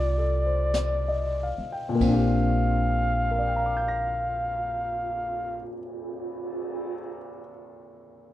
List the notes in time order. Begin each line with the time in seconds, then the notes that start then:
Already playing: C2 A3 C4 D#4 F4 G4 A4 D5
0.18 A4
0.46 C5
0.74 D5, brush sweep, snare, hi-hat pedal
1.08 D#5
1.43 F5
1.58 muted upright bass stroke
1.72 G5
1.89 A#2
1.95 A#3
2.00 A#1 C4 F5, kick, ride
2.08 D4
2.14 G4
2.87 cymbal swell
3.31 A#4
3.39 D5
3.47 G5
3.56 A#5
3.66 D6
3.77 G6
3.88 A#6